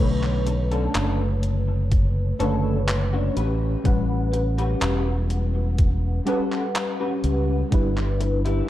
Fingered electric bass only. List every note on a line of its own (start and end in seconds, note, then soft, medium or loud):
0.00 0.87 B1 medium
0.95 2.32 F#1 medium
2.40 3.29 F#1 medium
3.37 3.75 A1 medium
3.85 4.74 A1 medium
4.82 6.19 E1 medium
7.24 7.62 C#2 medium
7.72 8.61 G1 medium